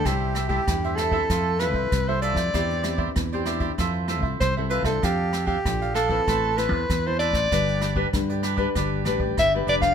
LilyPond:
<<
  \new Staff \with { instrumentName = "Cavaquinho" } { \time 4/4 \key c \major \tempo 4 = 96 <e' a' c'' e''>8 <e' a' c'' e''>16 <e' a' c'' e''>16 r16 <a' c'' e''>16 <e' a' c'' e''>16 <e' a' c'' e''>16 <f' a' c'' e''>8 <f' a' c'' e''>16 <a' c'' e''>8 <a' c'' e''>16 <f' a' c'' e''>16 <a' c'' e''>16 | <e' g' c'' d''>8 <e' g' c'' d''>16 <e' g' c'' d''>16 r16 <g' c'' d''>16 <e' g' c'' d''>16 <e' g' c'' d''>16 <f' a' c'' e''>8 <f' a' c'' e''>16 <a' c'' e''>8 <a' c'' e''>16 <f' a' c'' e''>16 <a' c'' e''>16 | <d' a' d'' f''>8 <d' a' d'' f''>16 <d' a' d'' f''>16 r16 <a' d'' f''>16 <d' a' d'' f''>16 <d' a' d'' f''>16 <a' b' c'' a''>8 <a' b' c'' a''>16 <b' c'' a''>8 <b' c'' a''>16 <a' b' c'' a''>16 <b' c'' a''>16 | <d' g' b' d''>8 <d' g' b' d''>16 <d' g' b' d''>16 r16 <g' b' d''>16 <d' g' b' d''>16 <d' g' b' d''>16 <d' g' b' d''>8 <d' g' b' d''>16 <g' b' d''>8 <g' b' d''>16 <d' g' b' d''>16 <g' b' d''>16 | }
  \new Staff \with { instrumentName = "Soprano saxophone" } { \time 4/4 \key c \major g'8. g'8. a'4 b'8. c''16 d''8~ | d''4 r2 c''8 b'16 a'16 | g'8. g'8. a'4 b'8. c''16 d''8~ | d''4 r2 e''8 d''16 f''16 | }
  \new Staff \with { instrumentName = "Nylon-string guitar" } { \time 4/4 \key c \major << { <g a e'>8 r16 <g a e'>16 <g a e'>8. <c' e' a'>8. <c' e' a'>8 r16 <c' e' a'>8. | <c' d' g'>16 r16 <c' d' g'>8. <c' d' g'>8. <c' e' a'>8 <c' e' a'>8. <c' e' a'>8 <d' f' a'>16~ | <d' f' a'>8 r8 <d' f' a'>8 r16 <c' e' b'>8. <c' e' b'>8 r16 <c' e' b'>8. | <d' g' b'>8. <d' g' b'>16 <d' g' b'>8 r16 <d' g' b'>8. <d' g' b'>8. <d' g' b'>8. | } \\ { c4 g,4 f4 c4 | e4 e4 f4 c4 | f4 f4 a4 e4 | g4 d4 g4 d4 | } >> }
  \new Staff \with { instrumentName = "Fingered electric bass" } { \clef bass \time 4/4 \key c \major c,4 e,4 f,8. c,16 c,8. f,16 | e,4 e,4 f,8. c,16 c,8. c,16 | f,4 bes,,4 a,,8. e,16 e,8. a,,16 | g,,4 g,4 g,,8 a,,8 g,,8 f,,8 | }
  \new DrumStaff \with { instrumentName = "Drums" } \drummode { \time 4/4 <hh bd ss>8 <hh ss>16 <hh bd>16 <hh bd ss>16 hh16 <hh ss>16 bd16 <hh bd ss>8 <hh ss>16 bd16 <hh bd ss>8 hh16 <hh bd ss>16 | <hh bd ss>16 hh16 <hh ss>16 bd16 <hh bd ss>16 hh16 <hh ss>16 <hh bd>16 <hh bd ss>8 <hh ss>16 bd16 <hh bd ss>8 hh16 <hh bd ss>16 | <hh bd ss>8 <hh ss>16 <hh bd>16 <hh bd ss>16 hh16 <hh ss>16 bd16 <hh bd ss>8 <hh ss>16 bd16 <hh bd ss>8 hh16 <hh bd ss>16 | <hh bd ss>16 hh16 <hh ss>16 bd16 <hh bd ss>16 hh16 <hh ss>16 <hh bd>16 <hh bd ss>8 <hh ss>16 bd16 <hh bd ss>8 hh16 <hh bd ss>16 | }
>>